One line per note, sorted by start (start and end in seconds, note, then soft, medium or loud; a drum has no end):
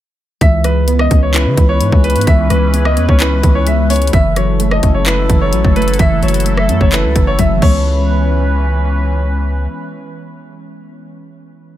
0.41 1.08 C#2 loud
0.41 1.56 E3 medium
0.41 4.10 E3 medium
0.41 4.10 C#4 medium
0.41 4.10 B4 loud
0.41 0.59 E5 loud
0.41 kick loud
0.41 closed hi-hat medium
0.64 1.80 G#3 medium
0.64 0.97 B4 medium
0.64 cross-stick medium
0.64 closed hi-hat medium
0.88 2.02 B3 medium
0.88 closed hi-hat medium
0.99 1.18 D#5 medium
0.99 cross-stick loud
1.10 1.47 C#2 loud
1.10 2.27 C#4 medium
1.10 kick loud
1.10 closed hi-hat medium
1.23 1.32 C#5 medium
1.34 2.50 E4 loud
1.34 1.67 B4 medium
1.34 clap loud
1.34 closed hi-hat medium
1.46 1.57 C#3 loud
1.57 1.82 C#2 loud
1.57 2.26 E3 medium
1.57 kick loud
1.57 closed hi-hat medium
1.69 2.02 C#5 medium
1.81 1.92 G#2 loud
1.81 2.50 G#3 medium
1.81 closed hi-hat medium
1.92 2.17 C#2 loud
1.92 kick loud
2.03 2.73 B3 medium
2.03 2.22 B4 medium
2.03 closed hi-hat soft
2.10 closed hi-hat medium
2.16 2.27 G#2 loud
2.16 closed hi-hat medium
2.21 closed hi-hat medium
2.27 2.50 C#2 loud
2.27 3.42 E3 medium
2.27 2.45 E5 loud
2.27 kick loud
2.27 closed hi-hat medium
2.50 2.99 C#2 loud
2.50 3.66 G#3 medium
2.50 2.83 B4 medium
2.50 cross-stick medium
2.50 closed hi-hat medium
2.74 3.89 B3 loud
2.74 closed hi-hat medium
2.85 3.03 D#5 medium
2.85 cross-stick loud
2.97 3.08 E2 loud
2.97 4.13 C#4 medium
2.97 closed hi-hat medium
3.09 3.42 C#2 loud
3.09 3.18 C#5 medium
3.09 kick medium
3.20 4.13 E4 loud
3.20 3.53 B4 medium
3.20 clap loud
3.20 closed hi-hat medium
3.43 4.10 C#2 loud
3.43 4.12 E3 medium
3.43 kick loud
3.43 closed hi-hat medium
3.55 3.64 C#5 medium
3.67 4.13 G#3 medium
3.67 3.85 E5 medium
3.67 closed hi-hat medium
3.90 4.13 B3 medium
3.90 4.08 C#5 medium
3.90 closed hi-hat soft
3.90 open hi-hat medium
3.96 closed hi-hat medium
4.02 closed hi-hat medium
4.07 closed hi-hat medium
4.13 4.80 F#1 loud
4.13 5.28 E3 medium
4.13 7.59 F#3 medium
4.13 7.59 E4 medium
4.13 7.59 A4 medium
4.13 4.31 E5 loud
4.13 kick loud
4.13 closed hi-hat medium
4.36 5.52 F#3 medium
4.36 4.69 C#5 medium
4.36 cross-stick medium
4.36 closed hi-hat medium
4.60 5.75 A3 medium
4.60 closed hi-hat medium
4.71 4.90 D#5 medium
4.71 cross-stick loud
4.83 5.28 F#1 loud
4.83 5.99 C#4 medium
4.83 kick medium
4.83 closed hi-hat medium
4.94 5.04 C#5 medium
5.06 6.22 E4 loud
5.06 5.39 B4 medium
5.06 clap loud
5.06 closed hi-hat medium
5.29 5.54 F#1 loud
5.29 5.98 E3 medium
5.29 kick loud
5.29 closed hi-hat medium
5.41 5.74 C#5 medium
5.53 5.64 A1 loud
5.53 6.22 F#3 medium
5.53 closed hi-hat medium
5.64 5.98 F#1 loud
5.64 kick loud
5.76 6.45 A3 medium
5.76 5.94 B4 medium
5.76 closed hi-hat soft
5.82 closed hi-hat medium
5.88 closed hi-hat medium
5.94 closed hi-hat medium
5.99 6.22 F#1 loud
5.99 7.14 E3 loud
5.99 6.18 E5 loud
5.99 kick loud
5.99 closed hi-hat medium
6.23 6.71 F#1 loud
6.23 7.37 F#3 medium
6.23 6.56 C#5 medium
6.23 closed hi-hat medium
6.28 closed hi-hat medium
6.34 closed hi-hat medium
6.40 closed hi-hat medium
6.46 7.62 A3 medium
6.46 closed hi-hat medium
6.57 6.76 E5 medium
6.57 cross-stick loud
6.69 6.80 F#2 loud
6.69 7.62 C#4 medium
6.69 closed hi-hat medium
6.81 7.05 F#1 loud
6.81 6.90 C#5 medium
6.81 kick medium
6.92 7.62 E4 medium
6.92 7.25 B4 medium
6.92 clap loud
6.92 closed hi-hat medium
7.04 7.15 C#2 loud
7.16 7.38 F#1 loud
7.16 7.55 E3 medium
7.16 kick loud
7.16 closed hi-hat medium
7.27 7.36 C#5 medium
7.39 7.61 F#1 loud
7.39 7.62 F#3 medium
7.39 7.57 E5 medium
7.39 kick medium
7.39 closed hi-hat medium
7.56 10.68 E3 medium
7.60 9.67 C#2 loud
7.60 10.73 E3 medium
7.60 10.72 G#3 medium
7.60 10.76 B3 medium
7.60 10.73 C#4 medium
7.60 10.73 B4 loud
7.60 9.21 C#5 medium
7.60 kick loud
7.60 crash medium
7.68 10.80 C#4 medium